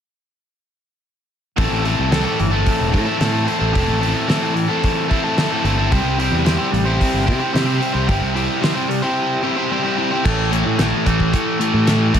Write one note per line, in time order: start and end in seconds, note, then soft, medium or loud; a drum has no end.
1.57 1.70 A1 medium
1.57 2.11 A2 medium
1.57 2.11 E3 medium
1.57 1.83 A3 medium
1.57 1.85 C4 medium
1.57 1.85 E4 medium
1.57 1.86 A4 medium
1.57 kick medium
1.57 open hi-hat medium
1.71 1.96 A1 medium
1.84 2.11 A3 medium
1.84 2.12 C4 medium
1.84 2.12 E4 medium
1.84 2.13 A4 medium
1.84 open hi-hat soft
1.99 2.24 C2 medium
2.11 3.19 A2 medium
2.11 3.20 E3 medium
2.11 2.27 A3 medium
2.11 2.27 C4 medium
2.11 2.26 E4 medium
2.11 2.25 A4 medium
2.11 snare medium
2.11 open hi-hat medium
2.25 2.39 A3 soft
2.25 2.39 C4 soft
2.25 2.40 E4 medium
2.25 2.40 A4 medium
2.39 2.64 G1 medium
2.39 muted overdriven electric guitar stroke soft
2.39 open hi-hat soft
2.51 2.91 A3 soft
2.51 2.92 C4 soft
2.51 2.93 E4 soft
2.51 2.93 A4 medium
2.66 kick medium
2.66 open hi-hat medium
2.80 2.95 E1 medium
2.92 3.06 A2 medium
2.92 3.06 A3 medium
2.92 3.07 C4 medium
2.92 3.06 E4 medium
2.92 3.05 A4 medium
2.92 kick medium
2.92 open hi-hat soft
3.06 3.20 A3 medium
3.06 3.21 C4 medium
3.06 3.21 E4 medium
3.06 3.20 A4 medium
3.20 3.61 A2 medium
3.20 3.45 A2 medium
3.20 3.72 E3 medium
3.20 3.33 A3 medium
3.20 3.34 C4 medium
3.20 3.33 E4 medium
3.20 3.31 A4 medium
3.20 snare medium
3.20 open hi-hat medium
3.32 3.45 A3 soft
3.32 3.46 C4 medium
3.32 3.47 E4 soft
3.32 3.47 A4 medium
3.46 3.60 A3 medium
3.46 3.60 C4 medium
3.46 3.60 E4 medium
3.46 3.58 A4 medium
3.46 open hi-hat soft
3.59 3.74 A1 medium
3.59 3.72 A3 soft
3.59 3.73 C4 medium
3.59 3.73 E4 medium
3.59 3.73 A4 medium
3.72 3.88 E1 medium
3.72 4.26 A2 medium
3.72 4.27 E3 medium
3.72 3.99 A3 medium
3.72 4.00 C4 medium
3.72 4.01 E4 medium
3.72 4.00 A4 medium
3.72 kick medium
3.72 open hi-hat medium
3.88 4.13 A1 medium
4.00 4.27 A3 medium
4.00 4.28 C4 medium
4.00 4.29 E4 medium
4.00 4.28 A4 medium
4.00 open hi-hat soft
4.27 4.69 A2 medium
4.27 5.37 E3 medium
4.27 4.43 A3 medium
4.27 4.43 C4 medium
4.27 4.42 E4 medium
4.27 4.40 A4 medium
4.27 snare medium
4.27 open hi-hat medium
4.42 4.53 A3 medium
4.42 4.54 C4 soft
4.42 4.55 E4 medium
4.42 4.54 A4 medium
4.54 muted overdriven electric guitar stroke soft
4.54 open hi-hat soft
4.68 5.07 A3 soft
4.68 5.09 C4 medium
4.68 5.09 E4 soft
4.68 5.10 A4 medium
4.83 kick medium
4.83 open hi-hat medium
5.08 5.25 A3 medium
5.08 5.25 C4 medium
5.08 5.25 E4 medium
5.08 5.23 A4 medium
5.08 kick medium
5.08 open hi-hat soft
5.24 5.37 A3 medium
5.24 5.38 C4 medium
5.24 5.38 E4 medium
5.24 5.38 A4 medium
5.37 5.78 A2 medium
5.37 5.91 E3 medium
5.37 5.52 A3 medium
5.37 5.52 C4 medium
5.37 5.51 E4 medium
5.37 5.50 A4 medium
5.37 snare medium
5.37 open hi-hat soft
5.51 5.63 A3 soft
5.51 5.64 C4 soft
5.51 5.65 E4 medium
5.51 5.65 A4 medium
5.64 5.89 G1 medium
5.64 5.79 A3 medium
5.64 5.79 C4 medium
5.64 5.79 E4 medium
5.64 5.77 A4 medium
5.64 open hi-hat soft
5.78 5.91 A3 soft
5.78 5.92 C4 medium
5.78 5.93 E4 medium
5.78 5.90 A4 medium
5.91 6.04 C2 loud
5.91 6.44 C3 medium
5.91 6.45 G3 medium
5.91 6.17 C4 medium
5.91 6.18 E4 medium
5.91 6.19 G4 medium
5.91 6.19 C5 medium
5.91 kick medium
5.91 open hi-hat medium
6.04 6.30 C2 medium
6.18 6.45 C4 medium
6.18 6.45 E4 medium
6.18 6.46 G4 medium
6.18 6.47 C5 medium
6.18 open hi-hat soft
6.31 6.57 E2 medium
6.45 7.52 C3 medium
6.45 7.53 G3 medium
6.45 6.60 C4 medium
6.45 6.59 E4 medium
6.45 6.58 G4 medium
6.45 6.58 C5 loud
6.45 snare loud
6.45 open hi-hat medium
6.58 6.71 C4 medium
6.58 6.72 E4 medium
6.58 6.72 G4 medium
6.58 6.73 C5 medium
6.72 6.98 A1 medium
6.72 muted overdriven electric guitar stroke soft
6.72 open hi-hat soft
6.86 7.26 C4 medium
6.86 7.27 E4 medium
6.86 7.27 G4 soft
6.86 7.27 C5 medium
7.01 kick medium
7.01 open hi-hat medium
7.14 7.30 G1 medium
7.26 7.40 C3 medium
7.26 7.41 C4 medium
7.26 7.40 E4 medium
7.26 7.39 G4 medium
7.26 7.39 C5 medium
7.26 kick medium
7.26 open hi-hat soft
7.39 7.53 C4 soft
7.39 7.54 E4 medium
7.39 7.53 G4 medium
7.39 7.54 C5 medium
7.53 7.94 C3 medium
7.53 7.79 C3 medium
7.53 7.95 G3 medium
7.53 7.68 C4 medium
7.53 7.67 E4 loud
7.53 7.65 G4 loud
7.53 7.66 C5 medium
7.53 snare medium
7.53 open hi-hat medium
7.66 7.79 C4 medium
7.66 7.80 E4 soft
7.66 7.80 G4 medium
7.66 7.81 C5 medium
7.80 7.94 C4 medium
7.80 7.93 E4 medium
7.80 7.93 G4 medium
7.80 7.92 C5 medium
7.80 open hi-hat soft
7.93 8.07 C2 medium
7.93 8.06 C4 medium
7.93 8.06 E4 medium
7.93 8.07 G4 medium
7.93 8.08 C5 medium
8.07 8.20 G1 medium
8.07 8.60 C3 medium
8.07 8.60 G3 medium
8.07 8.33 C4 medium
8.07 8.34 E4 medium
8.07 8.34 G4 medium
8.07 8.35 C5 medium
8.07 kick medium
8.07 open hi-hat medium
8.21 8.46 C2 medium
8.34 8.60 C4 medium
8.34 8.61 E4 medium
8.34 8.61 G4 medium
8.34 8.62 C5 medium
8.34 open hi-hat soft
8.61 9.02 C3 medium
8.61 9.03 G3 medium
8.61 8.76 C4 medium
8.61 8.75 E4 medium
8.61 8.74 G4 medium
8.61 8.73 C5 loud
8.61 snare loud
8.61 open hi-hat medium
8.75 8.87 C4 medium
8.75 8.88 E4 medium
8.75 8.88 G4 medium
8.75 8.88 C5 medium
8.89 muted overdriven electric guitar stroke soft
8.89 open hi-hat soft
9.02 9.41 C4 soft
9.02 9.42 E4 medium
9.02 9.43 G4 medium
9.02 9.43 C5 medium
9.43 9.57 C4 medium
9.43 9.56 E4 medium
9.43 9.56 G4 medium
9.43 9.55 C5 medium
9.56 9.70 C4 medium
9.56 9.70 E4 medium
9.56 9.71 G4 medium
9.56 9.71 C5 medium
9.70 10.11 C3 medium
9.70 10.11 G3 medium
9.70 9.84 C4 medium
9.70 9.84 E4 medium
9.70 9.83 G4 medium
9.70 9.82 C5 medium
9.83 9.96 C4 medium
9.83 9.96 E4 medium
9.83 9.97 G4 medium
9.83 9.97 C5 soft
9.97 10.12 C4 medium
9.97 10.11 E4 medium
9.97 10.10 G4 medium
9.97 10.10 C5 medium
10.11 10.24 C4 soft
10.11 10.24 E4 soft
10.11 10.23 G4 medium
10.11 10.23 C5 medium
10.24 10.62 A1 medium
10.24 10.51 A2 medium
10.24 10.51 E3 medium
10.24 10.52 A3 medium
10.24 kick loud
10.24 crash medium
10.51 10.78 A2 medium
10.51 10.78 E3 medium
10.51 10.79 A3 medium
10.51 closed hi-hat soft
10.66 10.78 A2 medium
10.78 10.92 A1 medium
10.78 11.05 A2 medium
10.78 11.05 E3 medium
10.78 11.06 A3 medium
10.78 snare loud
10.78 closed hi-hat medium
11.05 11.31 A1 medium
11.05 11.31 A2 medium
11.05 11.33 E3 medium
11.05 11.32 A3 medium
11.05 kick medium
11.05 closed hi-hat medium
11.20 kick medium
11.33 11.59 A2 medium
11.33 11.60 E3 medium
11.33 11.59 A3 medium
11.33 kick medium
11.33 closed hi-hat medium
11.60 11.85 A2 medium
11.60 11.86 E3 medium
11.60 11.86 A3 medium
11.60 closed hi-hat medium
11.74 12.10 A2 medium
11.86 12.12 A2 medium
11.86 12.13 E3 medium
11.86 12.13 A3 medium
11.86 snare medium
11.86 closed hi-hat medium
12.14 12.20 A1 medium
12.14 12.20 A2 medium
12.14 12.20 E3 medium
12.14 12.20 A3 medium
12.14 kick medium
12.14 closed hi-hat medium